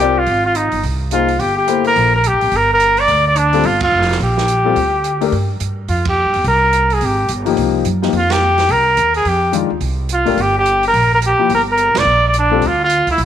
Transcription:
Already playing: upright bass C2, trumpet G4
0.00 grand piano C4 F4 A#4 D5
0.19 trumpet F4
0.26 upright bass G#1, open hi-hat
0.46 trumpet F4
0.55 trumpet D#4, closed hi-hat
0.72 upright bass G1, open hi-hat
0.83 upright bass C2, open hi-hat
1.11 grand piano A#3 D#4 G#4 C5, trumpet F4, closed hi-hat
1.28 open hi-hat
1.39 upright bass G1, trumpet G4, open hi-hat
1.57 trumpet G4
1.67 grand piano A#3 E4 A4 C5, closed hi-hat
1.84 trumpet A#4, open hi-hat
1.96 upright bass A#1, open hi-hat
2.16 trumpet A#4
2.24 trumpet G4, closed hi-hat
2.33 upright bass A1
2.41 upright bass G#1, open hi-hat
2.52 upright bass G1, open hi-hat
2.57 trumpet A#4
2.74 trumpet A#4
2.80 closed hi-hat
2.97 trumpet D5, open hi-hat
3.08 upright bass D2, open hi-hat
3.28 trumpet D5
3.36 trumpet D4, closed hi-hat
3.53 grand piano G3 C4 F4 A4, open hi-hat
3.63 upright bass G1, trumpet F4, open hi-hat
3.81 trumpet F4, kick, ride
3.92 upright bass F1
4.02 snare
4.09 snare, open hi-hat
4.20 upright bass A#1, trumpet G4, open hi-hat
4.38 snare
4.48 closed hi-hat
4.65 grand piano G3 C4 F4 A4
4.76 upright bass D2, open hi-hat
5.04 closed hi-hat
5.21 grand piano A3 D4 G4 A#4, open hi-hat
5.32 upright bass G2, open hi-hat
5.60 upright bass G2, closed hi-hat
5.88 upright bass F2, trumpet F4, open hi-hat
6.05 trumpet G4, kick, ride
6.25 upright bass G2
6.34 upright bass E2, open hi-hat
6.44 upright bass C2, trumpet A#4, open hi-hat
6.73 closed hi-hat
6.90 trumpet G#4, open hi-hat
7.01 upright bass G#1, open hi-hat
7.05 trumpet G4
7.28 upright bass G1, closed hi-hat
7.45 grand piano F3 A#3 D#4 G4, open hi-hat
7.57 upright bass C2, open hi-hat
7.85 upright bass F#2, closed hi-hat
8.02 grand piano F3 A#3 D#4 G4, snare
8.13 upright bass F2, open hi-hat
8.17 trumpet F4
8.30 trumpet G4, snare, ride
8.58 snare, open hi-hat
8.69 upright bass C2, trumpet A#4, open hi-hat
8.97 upright bass D#2, closed hi-hat
9.14 trumpet G#4, open hi-hat
9.25 upright bass F2, trumpet G4, open hi-hat
9.52 grand piano D#3 G#3 D4 F4, closed hi-hat
9.70 upright bass D#2
9.80 upright bass C2, open hi-hat
10.09 closed hi-hat
10.13 trumpet F4
10.25 upright bass G#1, grand piano A3 D4 G4 A#4, open hi-hat
10.37 upright bass G1, open hi-hat
10.41 trumpet G4
10.59 trumpet G4
10.66 closed hi-hat
10.83 open hi-hat
10.88 trumpet A#4
10.94 upright bass A#1, open hi-hat
11.15 trumpet A#4
11.22 closed hi-hat
11.27 trumpet G4
11.39 grand piano F3 A#3 E4 G4
11.49 upright bass G1, open hi-hat
11.55 trumpet A#4
11.71 trumpet A#4
11.77 closed hi-hat
11.94 upright bass F1, snare, ride
11.98 trumpet D5
12.05 upright bass A#1
12.28 trumpet D5
12.34 closed hi-hat
12.39 trumpet D4
12.51 grand piano G3 C4 F4 A4
12.62 upright bass D2, open hi-hat
12.67 trumpet F4
12.84 trumpet F4
12.90 closed hi-hat
13.07 upright bass D2, open hi-hat
13.11 trumpet E4
13.18 upright bass A#1, open hi-hat

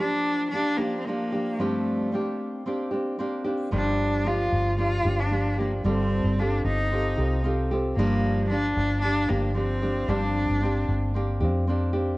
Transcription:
0.00 nylon-string guitar F3 A#3 D4 G4, cello D4
0.51 nylon-string guitar F3 A#3 D4, cello D4
0.55 nylon-string guitar G4
0.77 cello A#3, nylon-string guitar A#3 D4 G4
0.81 nylon-string guitar F3
1.00 cello C4
1.04 nylon-string guitar F3 A#3 D4, cello A#3
1.09 nylon-string guitar G4
1.32 nylon-string guitar F3 A#3 D4 G4
1.58 nylon-string guitar G2 F3 C4 D4 G4, cello A3
2.12 nylon-string guitar A#3 C4 D4 G4
2.66 nylon-string guitar A#3 C4 D4 G4
2.91 nylon-string guitar A#3 C4 D4 G4
3.19 nylon-string guitar A#3 C4 D4 G4
3.44 nylon-string guitar A#3 C4 D4 G4
3.71 fingered electric bass G1, nylon-string guitar G2 F3 G3 A#3 D4 G4, cello D4
4.24 nylon-string guitar F3 A#3 D4 G4, cello F4
4.52 fingered electric bass G1
4.78 nylon-string guitar F3 A#3 D4 G4, cello F4
5.04 fingered electric bass G1, nylon-string guitar F3 A#3 D4 G4
5.19 cello D4
5.31 nylon-string guitar F3 A#3 D4 G4
5.58 nylon-string guitar F3 A#3 D4 G4, cello A#3
5.84 fingered electric bass G1, nylon-string guitar G2 G3 C4 F4 G4 A4, cello C4
6.24 fingered electric bass G1
6.38 nylon-string guitar C4 F4 G4 A4, cello D4
6.64 fingered electric bass G1, cello D#4
6.91 nylon-string guitar C4 F4 G4 A4
7.17 fingered electric bass C2, nylon-string guitar C4 F4 G4 A4
7.44 nylon-string guitar C4 F4 G4 A4
7.71 nylon-string guitar C4 F4 G4 A4
7.96 fingered electric bass G1, nylon-string guitar G2 F3 G3 A#3 D4 G4, cello A#3
8.49 nylon-string guitar F3 A#3 D4 G4, cello D4
8.77 fingered electric bass G1
9.01 nylon-string guitar F3 A#3 D4 G4, cello D4
9.29 fingered electric bass G1, nylon-string guitar F3 A#3 D4 G4, cello A#3
9.54 nylon-string guitar F3 A#3 D4 G4, cello C4
9.82 nylon-string guitar F3 A#3 D4 G4
10.08 fingered electric bass G1, nylon-string guitar G2 F3 A#3 C4 D4 G4, cello D4
10.49 fingered electric bass G1
10.62 nylon-string guitar A#3 C4 D4 G4
10.88 fingered electric bass G1
11.14 nylon-string guitar A#3 C4 D4 G4
11.41 fingered electric bass F2, nylon-string guitar A#3 C4 D4 G4
11.67 nylon-string guitar A#3 C4 D4 G4
11.93 nylon-string guitar A#3 C4 D4 G4

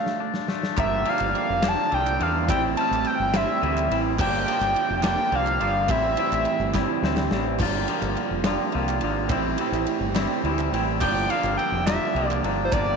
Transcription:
Already playing: clean electric guitar D3 F3 A3 D4, analog synth lead F5
0.06 snare
0.20 clean electric guitar D3 A3 D4
0.34 snare
0.48 clean electric guitar A3, snare
0.63 snare
0.77 fingered electric bass G1, clean electric guitar G2 D3 F3 A#3 D4 G4, analog synth lead E5, glockenspiel A#5, kick, clap, ride
1.05 clean electric guitar G2 D3 F3 A#3 D4 G4, analog synth lead F5, glockenspiel D6, ride
1.19 fingered electric bass G1, clap
1.34 glockenspiel D6, clap, ride
1.38 analog synth lead F5
1.50 fingered electric bass F1
1.61 clean electric guitar G2 D3 F3 A#3 D4 G4, glockenspiel F6, snare, clap, ride
1.68 analog synth lead A5
1.89 fingered electric bass C2, clean electric guitar G2 D3 F3 A#3 D4 G4, glockenspiel E6, ride
1.94 analog synth lead G5
2.07 clap
2.19 fingered electric bass E2, clean electric guitar G2 D3 F3 A#3 D4 G4, analog synth lead F5, glockenspiel D6, ride
2.47 fingered electric bass A1, clean electric guitar A2 E3 G3 C4 E4 G4, analog synth lead G5, kick, clap, ride
2.52 glockenspiel E6
2.76 clean electric guitar A2 E3 G3 C4 E4 G4, analog synth lead A5, ride
2.80 glockenspiel F6
2.91 fingered electric bass A1, clap
3.04 analog synth lead G5, clap, ride
3.08 glockenspiel E6
3.19 fingered electric bass G1
3.31 clean electric guitar A2 E3 G3 C4 E4 G4, snare, clap, ride
3.36 analog synth lead E5, glockenspiel C6
3.61 fingered electric bass D2, clean electric guitar A2 E3 G3 C4 E4 G4, ride
3.77 clap
3.89 fingered electric bass A1, clean electric guitar A2 E3 G3 C4 E4 G4, ride
4.15 fingered electric bass G1, clean electric guitar G2 D3 F3 A#3 D4 G4, clap
4.19 analog synth lead G5, glockenspiel D6, kick, crash
4.45 clean electric guitar G2 D3 F3 A#3 D4 G4, ride
4.61 fingered electric bass G1, clap
4.75 clap, ride
4.90 fingered electric bass F1
5.01 clean electric guitar G2 D3 F3 A#3 D4 G4, glockenspiel D6, snare, clap, ride
5.06 analog synth lead G5
5.30 fingered electric bass C2, clean electric guitar G2 D3 F3 A#3 D4 G4, glockenspiel D6, ride
5.35 analog synth lead F5
5.47 clap
5.59 fingered electric bass G1, clean electric guitar G2 D3 F3 A#3 D4 G4, ride
5.88 fingered electric bass A1, clean electric guitar A2 E3 G3 C4 E4 G4, analog synth lead E5, glockenspiel C6, kick, clap, ride
6.16 clean electric guitar A2 E3 G3 C4 E4 G4, ride
6.32 fingered electric bass A1, clap
6.45 clap, ride
6.59 fingered electric bass G1, clap
6.73 clean electric guitar A2 E3 G3 C4 E4 G4, kick, snare, clap
7.02 fingered electric bass D2, clean electric guitar A2 E3 G3 C4 E4 G4, snare
7.17 snare, clap
7.30 fingered electric bass A1, clean electric guitar A2 E3 G3 C4 E4 G4, snare, clap
7.59 fingered electric bass G1, clean electric guitar G2 D3 F3 A#3 D4 F4 G4, kick, clap, crash, splash
7.87 clean electric guitar G2 D3 F3 A#3 D4 F4 G4, ride
8.02 fingered electric bass G1, clap
8.16 clap, ride
8.31 fingered electric bass F1
8.44 clean electric guitar G2 D3 F3 A#3 D4 F4 G4, snare, clap, ride
8.72 fingered electric bass C2, clean electric guitar G2 D3 F3 A#3 D4 F4 G4, ride
8.89 clap
9.00 fingered electric bass G#1, clean electric guitar G2 D3 F3 A#3 D4 G4, ride
9.04 clean electric guitar F4
9.29 fingered electric bass A1, clean electric guitar A2 E3 G3 C4 E4 G4, kick, clap, ride
9.57 clean electric guitar A2 E3 G3 C4 G4, ride
9.61 clean electric guitar E4
9.72 fingered electric bass A1, clap
9.86 clap, ride
10.00 fingered electric bass G1
10.14 clean electric guitar A2 E3 G3 C4 E4 G4, snare, clap, ride
10.43 fingered electric bass D2, clean electric guitar A2 E3 G3 C4 E4 G4, ride
10.59 clap
10.72 fingered electric bass A1, clean electric guitar A2 E3 G3 C4 E4 G4, ride
11.00 fingered electric bass G1, clean electric guitar G2 D3 F3 A#3 D4 G4, analog synth lead G5, glockenspiel D6, kick, clap, crash
11.29 clean electric guitar G2 D3 F3 A#3 D4 G4, analog synth lead F5, glockenspiel D6, ride
11.44 fingered electric bass G1, clap
11.57 analog synth lead G5, glockenspiel E6, clap, ride
11.72 fingered electric bass F1
11.85 clean electric guitar G2 D3 F3 A#3 D4 G4, analog synth lead E5, glockenspiel A#5, snare, clap, ride
12.13 fingered electric bass C2, clean electric guitar G2 D3 F3 A#3 D4 G4, ride
12.27 analog synth lead D5, clap
12.42 fingered electric bass G1, clean electric guitar G2 D3 F3 A#3 D4 G4, ride
12.64 analog synth lead C5, glockenspiel A5
12.71 fingered electric bass G1, clean electric guitar G2 D3 F3 A#3 D4 G4, analog synth lead D5, glockenspiel A#5, kick, clap, ride
12.86 clap

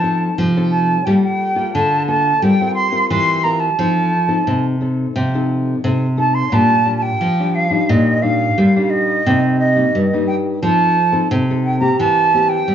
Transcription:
Already playing: nylon-string guitar F3, flute A5
0.03 nylon-string guitar C4 D#4 A4
0.38 nylon-string guitar C3 F3
0.56 nylon-string guitar C4 D#4 A4
0.70 flute A5
1.05 nylon-string guitar G3 A#3 F4 A4, flute G5
1.23 flute G5
1.55 nylon-string guitar A#3 F4 A4
1.74 nylon-string guitar D3, flute A5
2.07 nylon-string guitar A#3 F4 A4, flute A5
2.42 nylon-string guitar G3 C4 F4 A#4, flute G5
2.61 nylon-string guitar C4 F4 A#4
2.74 flute C6
2.92 nylon-string guitar C4 F4 A#4
3.10 nylon-string guitar E3 G3, flute C6
3.44 nylon-string guitar C4 F4 A#4, flute A#5
3.60 flute A5
3.79 nylon-string guitar F3 C4 D#4 A4
4.28 nylon-string guitar C4 D#4 A4
4.47 nylon-string guitar C3
4.81 nylon-string guitar C4 D#4 A4
5.16 nylon-string guitar C3 F3
5.34 nylon-string guitar C4 D#4 A4
5.84 nylon-string guitar C3 C4 D#4 A4
6.17 nylon-string guitar C4 D#4 A4, flute A5
6.34 flute C6
6.52 nylon-string guitar A#2 G3 D4 F4, flute A5
6.85 nylon-string guitar G3 D4 F4
6.97 flute A5
7.02 flute G5
7.21 nylon-string guitar F3
7.39 nylon-string guitar G3 D4 F4
7.55 flute F5
7.70 nylon-string guitar G3 D4 D#4
7.90 nylon-string guitar A#2, flute D#5
8.22 nylon-string guitar G3 D4 D#4, flute F5
8.58 nylon-string guitar A#2 G3
8.76 nylon-string guitar G3 D4 D#4
8.90 flute D#5
9.27 nylon-string guitar C3 G3 A#3 D#4
9.59 flute D#5
9.75 nylon-string guitar G3 A#3 D#4
9.95 nylon-string guitar G2 G3
10.13 nylon-string guitar G3 A#3 D#4
10.27 flute G5
10.63 nylon-string guitar F3 C4 D#4 A4, flute A5
11.12 nylon-string guitar C4 D#4 A4
11.32 nylon-string guitar C3
11.50 nylon-string guitar C4 D#4 A4
11.64 flute G5
11.80 nylon-string guitar A#3 C4 G4, flute A#5
11.99 nylon-string guitar E3, flute A5
12.34 nylon-string guitar A#3 C4 G4
12.49 flute G5
12.68 nylon-string guitar E3 G3

